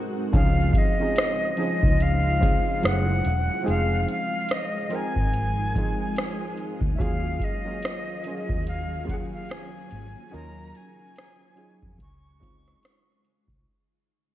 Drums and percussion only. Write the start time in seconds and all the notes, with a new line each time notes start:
0.33 kick, closed hi-hat
0.73 kick, closed hi-hat
1.16 cross-stick, closed hi-hat
1.57 closed hi-hat
1.83 kick
2.00 closed hi-hat
2.42 kick, closed hi-hat
2.83 cross-stick, closed hi-hat
3.25 closed hi-hat
3.68 closed hi-hat
4.09 closed hi-hat
4.49 cross-stick, closed hi-hat
4.90 closed hi-hat
5.16 kick
5.33 closed hi-hat
5.76 kick, closed hi-hat
6.16 cross-stick, closed hi-hat
6.57 closed hi-hat
6.81 kick
7.00 kick, closed hi-hat
7.40 kick, closed hi-hat
7.82 cross-stick, closed hi-hat
8.24 closed hi-hat
8.49 kick
8.67 closed hi-hat
9.09 kick, closed hi-hat
9.49 cross-stick, closed hi-hat
9.91 closed hi-hat
10.34 closed hi-hat
10.75 closed hi-hat
11.16 cross-stick, closed hi-hat
11.57 closed hi-hat
11.83 kick
11.99 kick, closed hi-hat
12.42 kick, closed hi-hat
12.67 cross-stick, closed hi-hat
12.83 cross-stick, closed hi-hat
13.24 closed hi-hat
13.48 kick, closed hi-hat